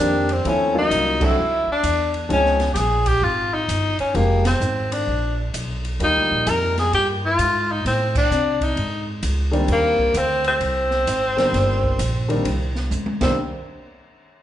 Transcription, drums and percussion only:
0.29 ride soft
0.45 kick soft
0.45 ride medium
0.91 kick soft
0.91 hi-hat pedal medium
0.91 ride medium
1.21 kick medium
1.21 crash medium
1.84 kick soft
1.84 hi-hat pedal medium
1.84 ride medium
2.14 ride soft
2.30 kick soft
2.30 ride medium
2.45 snare soft
2.59 snare soft
2.59 ride soft
2.75 kick soft
2.75 snare soft
2.75 hi-hat pedal medium
2.75 ride medium
3.06 kick medium
3.06 ride medium
3.22 kick soft
3.69 kick soft
3.69 hi-hat pedal medium
3.69 ride medium
3.99 ride soft
4.15 kick soft
4.15 ride medium
4.45 snare medium
4.45 ride medium
4.61 hi-hat pedal medium
4.92 ride medium
5.07 kick soft
5.54 kick soft
5.54 hi-hat pedal medium
5.54 ride medium
5.85 ride soft
6.00 kick soft
6.00 ride medium
6.47 kick soft
6.47 hi-hat pedal medium
6.47 ride medium
6.77 snare soft
6.77 ride soft
6.93 kick soft
6.93 ride medium
7.39 kick soft
7.39 hi-hat pedal medium
7.39 ride medium
7.85 kick soft
7.85 snare soft
7.85 ride medium
8.15 kick medium
8.15 crash medium
8.31 hi-hat pedal medium
8.61 kick medium
8.61 ride soft
8.77 ride soft
9.23 kick soft
9.23 hi-hat pedal medium
9.23 ride medium
9.53 ride soft
9.68 kick soft
9.68 ride medium
9.99 kick soft
10.14 hi-hat pedal medium
10.14 ride medium
10.44 ride soft
10.61 kick soft
10.61 ride medium
10.91 snare soft
11.07 kick soft
11.07 hi-hat pedal medium
11.07 ride medium
11.38 snare medium
11.38 ride soft
11.53 kick soft
11.53 snare soft
11.53 ride medium
11.83 kick medium
11.99 kick soft
11.99 hi-hat pedal medium
11.99 ride medium
12.30 ride soft
12.45 kick soft
12.45 ride medium
12.75 snare soft
12.91 hi-hat pedal medium
12.91 high tom soft
13.06 high tom medium
13.21 kick medium
13.21 snare medium
13.21 crash medium

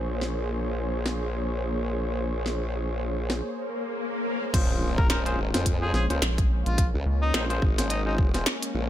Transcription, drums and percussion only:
0.21 snare soft
1.06 snare soft
2.46 snare soft
3.30 snare soft
4.54 kick loud
4.54 closed hi-hat medium
4.54 crash loud
4.98 kick loud
5.10 snare loud
5.10 closed hi-hat medium
5.26 closed hi-hat soft
5.54 snare medium
5.54 closed hi-hat medium
5.66 kick medium
5.66 closed hi-hat medium
5.94 snare soft
6.10 closed hi-hat soft
6.22 snare loud
6.22 closed hi-hat medium
6.38 kick loud
6.38 closed hi-hat medium
6.66 closed hi-hat soft
6.78 kick loud
6.78 closed hi-hat medium
7.34 snare loud
7.34 closed hi-hat medium
7.50 closed hi-hat soft
7.62 kick loud
7.78 snare medium
7.78 closed hi-hat medium
7.90 closed hi-hat medium
8.18 kick loud
8.34 snare soft
8.34 closed hi-hat soft
8.46 snare loud
8.46 closed hi-hat medium
8.63 closed hi-hat medium

